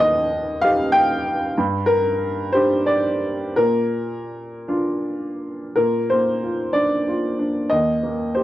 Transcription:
Already playing: D#2
0.00 D#5
0.61 D#4 G4 F5
0.92 G5
1.58 G2
1.86 A#4
2.52 D4 G4 C5
2.86 D5
3.56 A#2 A#4
4.68 D4 F4
5.76 A#2 A#4
6.10 A#3 C5
6.43 F4
6.73 D4 D5
7.08 F4
7.39 D4
7.70 D#2 D#5
8.03 A#3
8.35 G4 C5

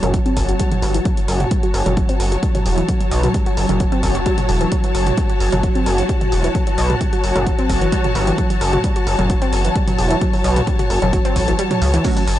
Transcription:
Already playing: F#3 F#4 C#5 A5
0.03 F#1 F#3, closed hi-hat, mid tom
0.14 F#3, kick, closed hi-hat
0.26 C4, closed hi-hat
0.37 F#1, kick, open hi-hat
0.49 F#4, closed hi-hat
0.60 G3, kick, closed hi-hat
0.72 F#3, closed hi-hat, mid tom
0.82 G1, open hi-hat
0.94 E3, closed hi-hat
1.05 F#3, kick, closed hi-hat
1.17 F#3, closed hi-hat
1.28 F#1, open hi-hat
1.40 F#4, closed hi-hat, mid tom
1.51 G3, kick, closed hi-hat
1.63 F#4, closed hi-hat
1.74 F#1, open hi-hat
1.86 F#1 F#3, closed hi-hat, mid tom
1.97 F#3, kick, closed hi-hat
2.09 C4, closed hi-hat
2.20 F#1, open hi-hat
2.32 F#4, closed hi-hat
2.43 G3, kick, closed hi-hat
2.55 F#3, closed hi-hat, mid tom
2.66 E1, open hi-hat
2.78 E3, closed hi-hat
2.89 F#3, kick, closed hi-hat
3.01 F#3, closed hi-hat
3.11 B1, open hi-hat
3.23 F#4, closed hi-hat, mid tom
3.34 G3, kick, closed hi-hat
3.46 F#4, closed hi-hat
3.57 F#1, open hi-hat
3.69 F#1 F#3, closed hi-hat, mid tom
3.80 F#3, kick, closed hi-hat
3.92 C4, closed hi-hat
4.03 F#1, kick, open hi-hat
4.15 F#4, closed hi-hat
4.26 G3, kick, closed hi-hat
4.38 F#3, closed hi-hat, mid tom
4.49 E1, open hi-hat
4.61 E3, closed hi-hat
4.72 F#3, kick, closed hi-hat
4.84 F#3, closed hi-hat
4.95 F#1, open hi-hat
5.07 F#4, closed hi-hat, mid tom
5.18 G3, kick, closed hi-hat
5.30 F#4, closed hi-hat
5.40 F#1, open hi-hat
5.52 F#1 F#3, closed hi-hat, mid tom
5.63 F#3, kick, closed hi-hat
5.75 C4, closed hi-hat
5.86 F#1, open hi-hat
5.98 E3, closed hi-hat
6.09 G3, kick, closed hi-hat
6.21 F#3, closed hi-hat, mid tom
6.32 E1, open hi-hat
6.44 E3, closed hi-hat
6.55 F#3, kick, closed hi-hat
6.67 F#3, closed hi-hat
6.78 B1, open hi-hat
6.90 F#4, closed hi-hat, mid tom
7.01 G3, kick, closed hi-hat
7.13 F#4, closed hi-hat
7.24 F#1, open hi-hat
7.36 F#1 F#3, closed hi-hat, mid tom
7.47 F#3, kick, closed hi-hat
7.59 C4, closed hi-hat
7.69 F#1, kick, open hi-hat
7.81 E3, closed hi-hat
7.92 G3, kick, closed hi-hat
8.04 F#3, closed hi-hat, mid tom
8.15 G1, open hi-hat
8.27 E3, closed hi-hat
8.38 F#3, kick, closed hi-hat
8.50 F#3, closed hi-hat
8.61 F#1, open hi-hat
8.73 F#4, closed hi-hat, mid tom
8.84 G3, kick, closed hi-hat
8.96 F#4, closed hi-hat
9.07 F#1, open hi-hat
9.19 F#1 F#3, closed hi-hat, mid tom
9.30 F#3, kick, closed hi-hat
9.42 C4, closed hi-hat
9.53 F#1, open hi-hat
9.65 E3, closed hi-hat
9.76 G3, kick, closed hi-hat
9.88 F#3, closed hi-hat, mid tom
9.98 E1, open hi-hat
10.11 E3, closed hi-hat
10.21 F#3, kick, closed hi-hat
10.33 F#3, open hi-hat
10.44 B1, open hi-hat
10.56 F#4, closed hi-hat, mid tom
10.67 G3, kick, closed hi-hat
10.79 F#4, closed hi-hat, mid tom
10.90 F#1, open hi-hat
11.02 F#1 F#3, closed hi-hat, mid tom
11.13 F#3, kick, closed hi-hat
11.25 C4, closed hi-hat
11.36 A1, kick, open hi-hat
11.48 E3, closed hi-hat
11.59 G3, closed hi-hat
11.71 F#3, closed hi-hat, mid tom
11.82 C#2, open hi-hat
11.94 E3, closed hi-hat
12.05 F#3 A3 C#4 F#4, kick, closed hi-hat, crash, shaker
12.17 F#3, closed hi-hat, shaker
12.28 F#1, open hi-hat

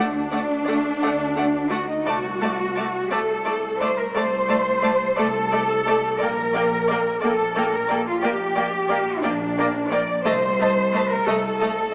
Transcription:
Already playing: D2 D4
0.31 A3 D5 F#5
0.65 A3 D5 F#5
1.02 D2 A3 D5 F#5
1.37 A3 D5 F#5
1.70 A3 F#4 D5 F#5
1.89 D#4
2.05 C2 A3 F#4 D5 A5
2.41 A3 D5 A5
2.76 A3 D5 A5
3.11 C2 A3 A4 D5 A5
3.45 A3 D5 A5
3.80 A3 C5 D5 A5
3.98 A#4
4.15 C2 A3 C5 D5 A5
4.49 A3 D5 A5
4.82 A3 D5 A5
5.16 C2 A3 A4 D5 A5
5.51 A3 D5 A5
5.87 A3 D5 A5
6.18 A#3 D5
6.22 A#1 A#4 G5
6.54 A#3 D5 G5
6.87 A#3 D5 G5
7.20 A#1 A#3 A4 D5
7.25 G5
7.54 A#3 D5 G5
7.74 A#4
7.88 A#3 A4 D5 G5
8.08 F4
8.22 A#1 A#3 G4 D5 G5
8.55 A#3 D5 G5
8.88 A#3 D5 G5
9.22 A#1 A#3 D4 D5 G5
9.58 A#3 D5 G5
9.91 A#3 D5 G5
10.25 C2 A3 C5 D#5 A5
10.60 A3 D#5 A5
10.93 A3 D#5 A5
11.11 A#4
11.26 C2 A3 A4 D#5 A5
11.60 A3 D#5 A5

